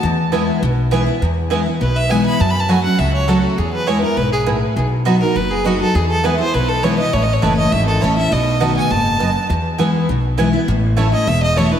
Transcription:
<<
  \new Staff \with { instrumentName = "Fiddle" } { \time 4/4 \key e \major \tempo 4 = 203 r1 | r2 b'8 e''8 gis''8 b''8 | \tuplet 3/2 { a''8 b''8 a''8 } gis''8 fis''8 e''8 cis''8 a'8 fis'8 | gis'8 b'8 cis''8 ais'8 b'8 gis'8 r4 |
r4. ais'8 b'8 gis'8 fis'8 a'8 | gis'8 a'8 b'8 c''8 b'8 a'8 cis''8 dis''8 | \tuplet 3/2 { cis''8 dis''8 cis''8 } b'8 dis''8 e''8 a'8 cis''8 e''8 | dis''4. gis''8 a''2 |
r1 | r4. dis''8 e''8 dis''8 cis''8 b'8 | }
  \new Staff \with { instrumentName = "Mandolin" } { \time 4/4 \key e \major r4 <b e' b' gis''>8 r4. <b e' b' gis''>8 r8 | r4 <b e' b' gis''>8 r4. <b e' b' gis''>8 r8 | r4 <a fis' cis'' fis''>8 r4. <a fis' cis'' fis''>8 r8 | r4 <b e' b' gis''>8 r4. <b e' b' gis''>8 r8 |
r4 <b fis' dis'' b''>8 r4. <b fis' dis'' b''>8 r8 | r4 <b e' b' gis''>8 r4. <b e' b' gis''>8 r8 | r4 <a e' cis'' a''>8 r4. <a e' cis'' a''>8 r8 | r4 <b fis' dis'' a''>8 r4. <b fis' dis'' a''>8 r8 |
r4 <b e' b' gis''>8 r4. <b e' b' gis''>8 r8 | r4 <a e' cis'' a''>8 r4. <a e' cis'' a''>8 r8 | }
  \new Staff \with { instrumentName = "Steel-string acoustic guitar" } { \time 4/4 \key e \major << { r4 <e gis b e'>4 r4 <e gis b e'>8 <b e'>8 | r4 <e gis b e'>8 <b e'>8 r4 <e gis b e'>4 | r4 <fis a cis' fis'>8 <cis' fis'>8 r4 <fis a cis' fis'>4 | r4 <e gis b e'>8 <b e'>8 r2 |
r4 <fis b dis' fis'>8 <dis' fis'>8 r4 <fis b dis' fis'>8 <dis' fis'>8 | r4 <e gis b e'>8 <b e'>8 r4 <e gis b e'>8 <b e'>8 | r4 <e a cis' e'>4 r4 <e a cis' e'>8 <cis' e'>8 | r4 <dis a b fis'>4 r2 |
r4 <e gis b e'>4 r4 <e gis b e'>8 <b e'>8 | r4 <e a cis' e'>8 <cis' e'>8 r4 <e a cis' e'>8 <cis' e'>8 | } \\ { e,2 b,2 | e,2 b,2 | fis,2 cis2 | e,2 gis,4 a,4 |
b,2 fis,2 | e,2 b,2 | a,2 e,2 | b,2 gis,4 fis,4 |
e,2 b,2 | a,2 e,2 | } >> }
  \new Staff \with { instrumentName = "Upright bass" } { \clef bass \time 4/4 \key e \major e,2 b,,2 | e,2 b,,2 | fis,2 cis,2 | e,2 b,,2 |
b,,2 fis,,2 | e,2 b,,2 | a,,4 fis,,4 gis,,4 a,,4 | b,,2 fis,,2 |
e,2 b,,2 | a,,2 e,,2 | }
>>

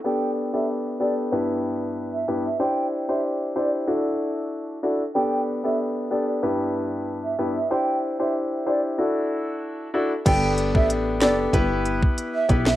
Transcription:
<<
  \new Staff \with { instrumentName = "Flute" } { \time 4/4 \key g \major \tempo 4 = 94 g''8 r16 e''16 r8 d''16 r4. e''16 r16 e''16 | g''8 r16 e''16 r8 d''16 r2 r16 | g''8 r16 e''16 r8 d''16 r4. e''16 r16 e''16 | g''8 r16 e''16 r8 d''16 r2 r16 |
g''8 r16 e''16 r8 d''16 r4. e''16 r16 e''16 | }
  \new Staff \with { instrumentName = "Grand piano" } { \time 4/4 \key g \major <b d' g' a'>8. <b d' g' a'>8. <b d' g' a'>8 <g, b e' g' b'>4. <g, b e' g' b'>16 r16 | <d' e' g' c''>8. <d' e' g' c''>8. <d' e' g' c''>8 <d' e' fis' a'>4. <d' e' fis' a'>16 r16 | <b d' g' a'>8. <b d' g' a'>8. <b d' g' a'>8 <g, b e' g' b'>4. <g, b e' g' b'>16 r16 | <d' e' g' c''>8. <d' e' g' c''>8. <d' e' g' c''>8 <d' e' fis' a'>4. <d' e' fis' a'>16 r16 |
<b d' g' a'>8. <b d' g' a'>8. <b d' g' a'>8 <b e' g' b'>4. <b e' g' b'>16 r16 | }
  \new Staff \with { instrumentName = "Analog synth bass" } { \clef bass \time 4/4 \key g \major r1 | r1 | r1 | r1 |
g,,8. a,,8. fis,,8 g,,4 r8 b,,8 | }
  \new DrumStaff \with { instrumentName = "Drums" } \drummode { \time 4/4 r4 r4 r4 r4 | r4 r4 r4 r4 | r4 r4 r4 r4 | r4 r4 r4 r4 |
<cymc hh bd>8 hh16 bd16 hh8 <hh sn>8 <hh bd>8 hh16 bd16 hh8 <hh bd>16 sn16 | }
>>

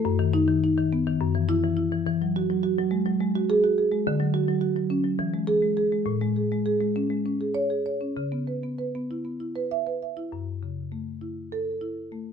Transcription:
<<
  \new Staff \with { instrumentName = "Marimba" } { \time 7/8 \key fis \dorian \tempo 4 = 103 r8 dis'8 r4. e'8 r8 | r2 r8 gis'8 r8 | r8 fis'8 r4. gis'8 r8 | r2 r8 cis''8 r8 |
r2 r8 e''8 r8 | r2 a'4 r8 | }
  \new Staff \with { instrumentName = "Marimba" } { \time 7/8 \key fis \dorian fis,16 dis8 dis16 dis'16 dis16 b16 dis16 fis,16 e8 e16 e'16 e16 | e16 fis16 fis'16 fis16 fis'16 fis16 gis16 fis16 gis16 fis'8 fis'16 gis'16 gis16 | d16 fis8 fis16 fis'16 fis16 cis'16 fis16 e16 gis8 gis16 gis'16 gis16 | a,16 gis16 gis'16 gis16 gis'16 gis16 cis'16 gis16 cis'16 gis'8 gis'16 cis''16 cis'16 |
cis16 b16 b'16 b16 b'16 b16 e'16 b16 e'16 b'8 b'16 e''16 e'16 | fis,8 cis8 a8 e'8. r16 e'8 a8 | }
>>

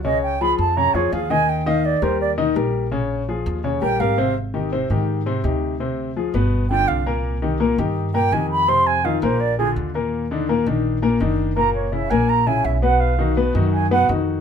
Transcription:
<<
  \new Staff \with { instrumentName = "Flute" } { \time 4/4 \key ees \major \tempo 4 = 167 ees''8 g''8 ces'''8 a''8 bes''8 des''8 f''8 aes''8 | g''8 f''8 d''8 c''8 d''8 r4. | r2 r8 g''8 f''4 | r1 |
r2 r8 g''8 f''8. r16 | r2 r8 g''8 aes''8 ces'''8 | c'''8 aes''8 f''8 c''8 d''8 aes'8 r4 | r1 |
bes''8 des''8 fes''8 aes''8 bes''8 aes''8 fes''8 ges''8 | f''4 r4 aes''8 fis''8 r4 | }
  \new Staff \with { instrumentName = "Grand piano" } { \time 4/4 \key ees \major <des des' des''>4 <f f' aes'>4 <des des' des''>8 <f f' aes'>8 <f f' aes'>8 <ees ees' ees''>8~ | <ees ees' ees''>8 <ees ees' ees''>4 <g g' bes'>4 <ees ees' ees''>8 <g g' bes'>4 | <des des' des''>4 <f f' aes'>4 <des des' des''>8 <g g' bes'>8 <g g' bes'>8 <c c' c''>8 | r8 <ees ees' g'>8 <c c' c''>8 <ees ees' g'>4 <c c' c''>8 <c ees' g'>4 |
<c c' c''>4 <f f' aes'>8 <ces ces' ces''>4 <d d' f'>4 <bes, bes bes'>8~ | <bes, bes bes'>8 <ees ees' g'>8 <bes, bes bes'>8 <ees ees' g'>4 <bes, bes bes'>8 <ees ees' g'>4 | <c c' c''>4 <ees ees' f'>8 <bes, bes bes'>4 <d d' f'>4 <bes, bes bes'>8~ | <bes, bes bes'>8 <d d' ees'>8 <bes, bes bes'>8 <ees d' ees'>4 <bes, bes bes'>8 <ees d' ees'>4 |
<bes, bes bes'>4 <des des' fes'>8 <bes, bes bes'>4 <des des' fes'>4 <ces ces' ces''>8~ | <ces ces' ces''>8 <dis dis' fis'>8 <b, b b'>8 <dis dis' fis'>4 <b, b b'>8 <dis dis' fis'>4 | }
  \new Staff \with { instrumentName = "Upright bass" } { \clef bass \time 4/4 \key ees \major des,4. f,4 f,8 ees,4~ | ees,4. ees,4. bes,,4~ | bes,,4. ees,4 bes,,8 aes,,4~ | aes,,4. aes,4. d,4~ |
d,4. g,,4. c,4~ | c,4. g,4. f,4~ | f,4. bes,,4. ees,4~ | ees,4. bes,,4. ges,,4~ |
ges,,4. bes,,4. ces,4~ | ces,4. fis,4. f,4 | }
>>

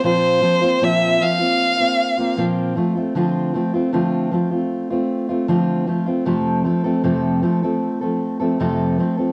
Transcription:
<<
  \new Staff \with { instrumentName = "Violin" } { \time 4/4 \key f \major \tempo 4 = 77 c''4 e''8 f''4. r4 | r1 | r1 | }
  \new Staff \with { instrumentName = "Steel-string acoustic guitar" } { \time 4/4 \key f \major <bes, f bes c' f'>8 <f bes c' f'>16 <bes c' f'>16 <bes, f bes c' f'>8 <f bes c' f'>16 <bes c' f'>8 <bes c' f'>8 <bes c' f'>16 <bes, f bes c' f'>8 <f a c' f'>16 <a c' f'>16 | <d f a c' f'>8 <f a c' f'>16 <a c' f'>16 <d f a c' f'>8 <f a c' f'>16 <a c' f'>8 <a c' f'>8 <a c' f'>16 <d f a c' f'>8 <f a c' f'>16 <a c' f'>16 | <f, c f a c' a'>8 <f a c' a'>16 <f a c' a'>16 <f, c f a c' a'>8 <f a c' a'>16 <f a c' a'>8 <f a c' a'>8 <f a c' a'>16 <f, c f a c' a'>8 <f a c' a'>16 <f a c' a'>16 | }
>>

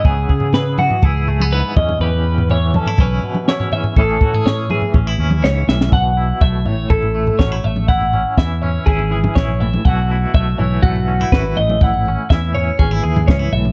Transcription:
<<
  \new Staff \with { instrumentName = "Clean electric guitar" } { \time 4/4 \key a \major \tempo 4 = 122 gis'4 b'8 fis'8 gis'4 b'8 dis''8 | b'4 cis''8 a'8 b'4 cis''8 e''8 | a'4 cis''8 gis'8 r4 cis''8 e''8 | fis''4 e''8 cis''8 a'4 cis''8 e''8 |
fis''4 e''8 cis''8 gis'4 cis''8 e''8 | fis''4 e''8 cis''8 fis'4 b'8 dis''8 | fis''4 e''8 cis''8 gis'4 cis''8 e''8 | }
  \new Staff \with { instrumentName = "Clean electric guitar" } { \time 4/4 \key a \major << { b8 gis'4. e'8 a16 b8. cis'8 | g'4. cis'16 e'16 cis'4 e'8 cis'8 | <e cis' e' gis'>8 fis'16 gis'4~ gis'16 cis'16 e'16 cis'4. | r8 e'8 a4 e'8 a8 cis'16 e'16 r8 |
e'8 cis'8 e'8 cis'8 e'8 gis'8 e'8 r8 | <e a e' fis'>8 e'8 a8 e'8 a8 cis'16 e'16 fis'8 r8 | e'8 cis'8 e'8 cis'8 cis'16 e'16 gis'8 cis'16 e'16 r8 | } \\ { <cis e>4. e4. gis,8 e,8~ | e,4 e4. b,4 e,8 | a,4. e4. gis,8 a,8 | b,4. a,4. fis8 r8 |
r4 e4. e4 a,8 | b,4. e4. fis,8 a,8~ | a,4 e4. e4 a,8 | } >> }
  \new Staff \with { instrumentName = "Fingered electric bass" } { \clef bass \time 4/4 \key a \major cis,8 cis4. cis,4. e,8 | e,2 b,,8 r4. | a,,8 a,4. a,,8 dis,8 cis,8 b,,8 | b,,4 b,,8 a,,8 a,,4 a,,8 a,,8~ |
a,,4 e,4 gis,,4 bes,,4 | b,,4 b,,8 b,,8 b,,4 gis,,8 a,,8~ | a,,4 e,4 gis,,8 dis,8 cis,8 b,,8 | }
  \new DrumStaff \with { instrumentName = "Drums" } \drummode { \time 4/4 <bd tomfh>8 bd16 tomfh16 <sn tomfh>8 <tomfh toml>16 tomfh16 <bd tomfh>8 tomfh16 toml16 r8 <bd tomfh toml>16 <tomfh toml>16 | tomfh8. tomfh16 tomfh8 <tomfh toml>16 tomfh16 <bd tomfh>8 tomfh16 toml16 sn16 tomfh16 tomfh16 tomfh16 | <bd tomfh>8 bd16 tomfh16 <sn tomfh>8 <tomfh toml>16 tomfh16 <bd tomfh>8 tomfh16 toml16 sn8 sn16 sn16 | <bd tomfh>4 bd8 tomfh8 <bd tomfh>16 tomfh8 tomfh16 <bd sn tomfh>16 tomfh16 tomfh16 toml16 |
<bd tomfh>16 tomfh16 tomfh8 <bd sn>8 tomfh8 <bd tomfh>16 tomfh8 <tomfh toml>16 <bd sn tomfh toml>16 tomfh16 tomfh16 toml16 | <bd tomfh>4 bd8 tomfh8 <bd tomfh>16 tomfh8 tomfh16 <bd sn tomfh>16 tomfh16 tomfh16 toml16 | <bd tomfh>16 tomfh16 tomfh8 <bd sn>8 tomfh8 <bd tomfh>16 tomfh8 <tomfh toml>16 <bd sn tomfh toml>16 tomfh16 tomfh16 toml16 | }
>>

